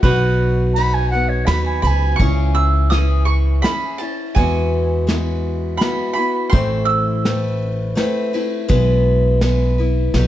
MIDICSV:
0, 0, Header, 1, 6, 480
1, 0, Start_track
1, 0, Key_signature, 4, "major"
1, 0, Tempo, 722892
1, 19, Time_signature, 3, 2, 24, 8
1, 6820, End_track
2, 0, Start_track
2, 0, Title_t, "Mandolin"
2, 0, Program_c, 0, 25
2, 19, Note_on_c, 0, 71, 87
2, 974, Note_on_c, 0, 83, 97
2, 1190, Note_off_c, 0, 71, 0
2, 1203, Note_off_c, 0, 83, 0
2, 1210, Note_on_c, 0, 83, 88
2, 1431, Note_off_c, 0, 83, 0
2, 1434, Note_on_c, 0, 85, 94
2, 1688, Note_off_c, 0, 85, 0
2, 1691, Note_on_c, 0, 88, 93
2, 1923, Note_off_c, 0, 88, 0
2, 1926, Note_on_c, 0, 87, 91
2, 2157, Note_off_c, 0, 87, 0
2, 2160, Note_on_c, 0, 85, 87
2, 2390, Note_off_c, 0, 85, 0
2, 2404, Note_on_c, 0, 83, 92
2, 2645, Note_on_c, 0, 81, 83
2, 2656, Note_off_c, 0, 83, 0
2, 2884, Note_off_c, 0, 81, 0
2, 2886, Note_on_c, 0, 80, 82
2, 3834, Note_on_c, 0, 83, 88
2, 3878, Note_off_c, 0, 80, 0
2, 4066, Note_off_c, 0, 83, 0
2, 4074, Note_on_c, 0, 83, 85
2, 4311, Note_off_c, 0, 83, 0
2, 4313, Note_on_c, 0, 84, 99
2, 4548, Note_off_c, 0, 84, 0
2, 4551, Note_on_c, 0, 88, 93
2, 6698, Note_off_c, 0, 88, 0
2, 6820, End_track
3, 0, Start_track
3, 0, Title_t, "Flute"
3, 0, Program_c, 1, 73
3, 491, Note_on_c, 1, 83, 101
3, 620, Note_on_c, 1, 80, 93
3, 629, Note_off_c, 1, 83, 0
3, 728, Note_off_c, 1, 80, 0
3, 732, Note_on_c, 1, 78, 94
3, 852, Note_on_c, 1, 73, 93
3, 862, Note_off_c, 1, 78, 0
3, 966, Note_on_c, 1, 83, 84
3, 976, Note_off_c, 1, 73, 0
3, 1082, Note_off_c, 1, 83, 0
3, 1099, Note_on_c, 1, 80, 69
3, 1209, Note_off_c, 1, 80, 0
3, 1216, Note_on_c, 1, 82, 89
3, 1237, Note_on_c, 1, 80, 97
3, 1244, Note_off_c, 1, 82, 0
3, 1449, Note_off_c, 1, 80, 0
3, 6820, End_track
4, 0, Start_track
4, 0, Title_t, "Steel-string acoustic guitar"
4, 0, Program_c, 2, 25
4, 18, Note_on_c, 2, 47, 84
4, 24, Note_on_c, 2, 54, 90
4, 25, Note_on_c, 2, 59, 95
4, 29, Note_on_c, 2, 63, 88
4, 31, Note_on_c, 2, 66, 109
4, 498, Note_off_c, 2, 47, 0
4, 499, Note_off_c, 2, 54, 0
4, 501, Note_off_c, 2, 59, 0
4, 503, Note_off_c, 2, 63, 0
4, 504, Note_off_c, 2, 66, 0
4, 507, Note_on_c, 2, 54, 58
4, 513, Note_on_c, 2, 59, 69
4, 516, Note_on_c, 2, 63, 70
4, 521, Note_on_c, 2, 66, 70
4, 735, Note_off_c, 2, 66, 0
4, 742, Note_off_c, 2, 54, 0
4, 743, Note_on_c, 2, 66, 43
4, 745, Note_off_c, 2, 59, 0
4, 745, Note_off_c, 2, 63, 0
4, 753, Note_on_c, 2, 63, 45
4, 762, Note_on_c, 2, 59, 42
4, 975, Note_off_c, 2, 59, 0
4, 979, Note_on_c, 2, 54, 59
4, 980, Note_off_c, 2, 66, 0
4, 982, Note_off_c, 2, 63, 0
4, 983, Note_on_c, 2, 59, 59
4, 990, Note_on_c, 2, 63, 58
4, 997, Note_on_c, 2, 66, 62
4, 1454, Note_on_c, 2, 49, 68
4, 1457, Note_off_c, 2, 54, 0
4, 1459, Note_off_c, 2, 59, 0
4, 1460, Note_on_c, 2, 52, 74
4, 1462, Note_off_c, 2, 63, 0
4, 1462, Note_on_c, 2, 61, 81
4, 1464, Note_on_c, 2, 64, 83
4, 1466, Note_off_c, 2, 66, 0
4, 1470, Note_on_c, 2, 68, 79
4, 1934, Note_off_c, 2, 49, 0
4, 1938, Note_off_c, 2, 52, 0
4, 1938, Note_off_c, 2, 61, 0
4, 1941, Note_on_c, 2, 52, 58
4, 1948, Note_on_c, 2, 61, 59
4, 1952, Note_off_c, 2, 64, 0
4, 1953, Note_off_c, 2, 68, 0
4, 1955, Note_on_c, 2, 64, 64
4, 1956, Note_on_c, 2, 68, 66
4, 2411, Note_off_c, 2, 61, 0
4, 2413, Note_off_c, 2, 52, 0
4, 2416, Note_on_c, 2, 52, 50
4, 2419, Note_on_c, 2, 61, 57
4, 2421, Note_off_c, 2, 64, 0
4, 2424, Note_on_c, 2, 64, 58
4, 2425, Note_off_c, 2, 68, 0
4, 2433, Note_on_c, 2, 68, 67
4, 2655, Note_off_c, 2, 52, 0
4, 2656, Note_off_c, 2, 61, 0
4, 2657, Note_off_c, 2, 64, 0
4, 2664, Note_off_c, 2, 68, 0
4, 2665, Note_on_c, 2, 64, 45
4, 2673, Note_on_c, 2, 61, 36
4, 2898, Note_on_c, 2, 52, 85
4, 2899, Note_off_c, 2, 64, 0
4, 2900, Note_off_c, 2, 61, 0
4, 2900, Note_on_c, 2, 56, 73
4, 2903, Note_on_c, 2, 59, 75
4, 2905, Note_on_c, 2, 66, 89
4, 2907, Note_on_c, 2, 64, 75
4, 3358, Note_off_c, 2, 56, 0
4, 3366, Note_off_c, 2, 59, 0
4, 3366, Note_on_c, 2, 56, 59
4, 3369, Note_on_c, 2, 59, 61
4, 3371, Note_off_c, 2, 66, 0
4, 3375, Note_off_c, 2, 64, 0
4, 3378, Note_on_c, 2, 64, 58
4, 3379, Note_on_c, 2, 66, 65
4, 3399, Note_off_c, 2, 52, 0
4, 3843, Note_off_c, 2, 56, 0
4, 3851, Note_on_c, 2, 56, 55
4, 3855, Note_off_c, 2, 59, 0
4, 3856, Note_off_c, 2, 66, 0
4, 3857, Note_off_c, 2, 64, 0
4, 3857, Note_on_c, 2, 59, 61
4, 3860, Note_on_c, 2, 64, 67
4, 3865, Note_on_c, 2, 66, 60
4, 4077, Note_off_c, 2, 66, 0
4, 4085, Note_on_c, 2, 66, 47
4, 4089, Note_off_c, 2, 64, 0
4, 4092, Note_off_c, 2, 56, 0
4, 4095, Note_off_c, 2, 59, 0
4, 4097, Note_on_c, 2, 64, 44
4, 4105, Note_on_c, 2, 59, 35
4, 4325, Note_on_c, 2, 45, 78
4, 4327, Note_off_c, 2, 64, 0
4, 4329, Note_off_c, 2, 66, 0
4, 4332, Note_on_c, 2, 52, 80
4, 4333, Note_on_c, 2, 57, 79
4, 4334, Note_off_c, 2, 59, 0
4, 4335, Note_on_c, 2, 64, 83
4, 4336, Note_on_c, 2, 60, 94
4, 4809, Note_off_c, 2, 45, 0
4, 4809, Note_off_c, 2, 57, 0
4, 4812, Note_off_c, 2, 52, 0
4, 4814, Note_off_c, 2, 60, 0
4, 4814, Note_off_c, 2, 64, 0
4, 4817, Note_on_c, 2, 57, 65
4, 4821, Note_on_c, 2, 60, 66
4, 4826, Note_on_c, 2, 64, 60
4, 4830, Note_on_c, 2, 71, 66
4, 5273, Note_off_c, 2, 57, 0
4, 5281, Note_on_c, 2, 57, 68
4, 5282, Note_off_c, 2, 60, 0
4, 5286, Note_off_c, 2, 64, 0
4, 5290, Note_on_c, 2, 60, 73
4, 5294, Note_on_c, 2, 64, 69
4, 5296, Note_off_c, 2, 71, 0
4, 5299, Note_on_c, 2, 71, 81
4, 5524, Note_off_c, 2, 71, 0
4, 5527, Note_off_c, 2, 57, 0
4, 5531, Note_off_c, 2, 60, 0
4, 5531, Note_off_c, 2, 64, 0
4, 5532, Note_on_c, 2, 71, 53
4, 5539, Note_on_c, 2, 64, 52
4, 5545, Note_on_c, 2, 60, 49
4, 5549, Note_on_c, 2, 57, 45
4, 5764, Note_off_c, 2, 57, 0
4, 5766, Note_off_c, 2, 64, 0
4, 5766, Note_off_c, 2, 71, 0
4, 5766, Note_on_c, 2, 56, 90
4, 5767, Note_off_c, 2, 60, 0
4, 5768, Note_on_c, 2, 47, 85
4, 5769, Note_on_c, 2, 59, 102
4, 5774, Note_on_c, 2, 64, 93
4, 5774, Note_on_c, 2, 71, 109
4, 6240, Note_off_c, 2, 56, 0
4, 6248, Note_on_c, 2, 56, 67
4, 6249, Note_off_c, 2, 59, 0
4, 6251, Note_off_c, 2, 47, 0
4, 6252, Note_off_c, 2, 64, 0
4, 6254, Note_off_c, 2, 71, 0
4, 6257, Note_on_c, 2, 59, 75
4, 6260, Note_on_c, 2, 64, 63
4, 6266, Note_on_c, 2, 71, 73
4, 6486, Note_off_c, 2, 71, 0
4, 6491, Note_off_c, 2, 56, 0
4, 6494, Note_on_c, 2, 71, 49
4, 6495, Note_off_c, 2, 64, 0
4, 6496, Note_off_c, 2, 59, 0
4, 6503, Note_on_c, 2, 64, 49
4, 6506, Note_on_c, 2, 59, 45
4, 6735, Note_off_c, 2, 71, 0
4, 6737, Note_on_c, 2, 54, 65
4, 6738, Note_off_c, 2, 59, 0
4, 6739, Note_off_c, 2, 64, 0
4, 6746, Note_on_c, 2, 59, 66
4, 6748, Note_on_c, 2, 63, 74
4, 6757, Note_on_c, 2, 71, 72
4, 6820, Note_off_c, 2, 54, 0
4, 6820, Note_off_c, 2, 59, 0
4, 6820, Note_off_c, 2, 63, 0
4, 6820, Note_off_c, 2, 71, 0
4, 6820, End_track
5, 0, Start_track
5, 0, Title_t, "Upright bass"
5, 0, Program_c, 3, 32
5, 20, Note_on_c, 3, 35, 81
5, 951, Note_off_c, 3, 35, 0
5, 974, Note_on_c, 3, 39, 76
5, 1191, Note_off_c, 3, 39, 0
5, 1214, Note_on_c, 3, 37, 84
5, 1431, Note_off_c, 3, 37, 0
5, 1458, Note_on_c, 3, 37, 98
5, 2389, Note_off_c, 3, 37, 0
5, 2899, Note_on_c, 3, 40, 98
5, 3829, Note_off_c, 3, 40, 0
5, 4336, Note_on_c, 3, 33, 99
5, 5268, Note_off_c, 3, 33, 0
5, 5772, Note_on_c, 3, 35, 102
5, 6708, Note_off_c, 3, 35, 0
5, 6730, Note_on_c, 3, 35, 89
5, 6820, Note_off_c, 3, 35, 0
5, 6820, End_track
6, 0, Start_track
6, 0, Title_t, "Drums"
6, 20, Note_on_c, 9, 36, 94
6, 23, Note_on_c, 9, 51, 53
6, 87, Note_off_c, 9, 36, 0
6, 89, Note_off_c, 9, 51, 0
6, 504, Note_on_c, 9, 51, 58
6, 570, Note_off_c, 9, 51, 0
6, 979, Note_on_c, 9, 38, 79
6, 979, Note_on_c, 9, 51, 60
6, 1045, Note_off_c, 9, 38, 0
6, 1045, Note_off_c, 9, 51, 0
6, 1223, Note_on_c, 9, 51, 51
6, 1290, Note_off_c, 9, 51, 0
6, 1458, Note_on_c, 9, 36, 88
6, 1458, Note_on_c, 9, 51, 50
6, 1525, Note_off_c, 9, 36, 0
6, 1525, Note_off_c, 9, 51, 0
6, 1936, Note_on_c, 9, 38, 63
6, 1936, Note_on_c, 9, 51, 50
6, 2003, Note_off_c, 9, 38, 0
6, 2003, Note_off_c, 9, 51, 0
6, 2419, Note_on_c, 9, 38, 71
6, 2419, Note_on_c, 9, 51, 53
6, 2485, Note_off_c, 9, 38, 0
6, 2485, Note_off_c, 9, 51, 0
6, 2653, Note_on_c, 9, 51, 44
6, 2720, Note_off_c, 9, 51, 0
6, 2896, Note_on_c, 9, 51, 47
6, 2897, Note_on_c, 9, 36, 89
6, 2962, Note_off_c, 9, 51, 0
6, 2964, Note_off_c, 9, 36, 0
6, 3376, Note_on_c, 9, 38, 68
6, 3376, Note_on_c, 9, 51, 50
6, 3443, Note_off_c, 9, 38, 0
6, 3443, Note_off_c, 9, 51, 0
6, 3859, Note_on_c, 9, 38, 75
6, 3859, Note_on_c, 9, 51, 55
6, 3926, Note_off_c, 9, 38, 0
6, 3926, Note_off_c, 9, 51, 0
6, 4336, Note_on_c, 9, 36, 95
6, 4336, Note_on_c, 9, 51, 56
6, 4402, Note_off_c, 9, 36, 0
6, 4402, Note_off_c, 9, 51, 0
6, 4816, Note_on_c, 9, 38, 72
6, 4816, Note_on_c, 9, 51, 54
6, 4882, Note_off_c, 9, 38, 0
6, 4882, Note_off_c, 9, 51, 0
6, 5293, Note_on_c, 9, 38, 71
6, 5293, Note_on_c, 9, 51, 54
6, 5360, Note_off_c, 9, 38, 0
6, 5360, Note_off_c, 9, 51, 0
6, 5535, Note_on_c, 9, 51, 54
6, 5601, Note_off_c, 9, 51, 0
6, 5772, Note_on_c, 9, 51, 53
6, 5774, Note_on_c, 9, 36, 97
6, 5839, Note_off_c, 9, 51, 0
6, 5841, Note_off_c, 9, 36, 0
6, 6250, Note_on_c, 9, 38, 66
6, 6250, Note_on_c, 9, 51, 53
6, 6317, Note_off_c, 9, 38, 0
6, 6317, Note_off_c, 9, 51, 0
6, 6732, Note_on_c, 9, 38, 68
6, 6732, Note_on_c, 9, 51, 51
6, 6799, Note_off_c, 9, 38, 0
6, 6799, Note_off_c, 9, 51, 0
6, 6820, End_track
0, 0, End_of_file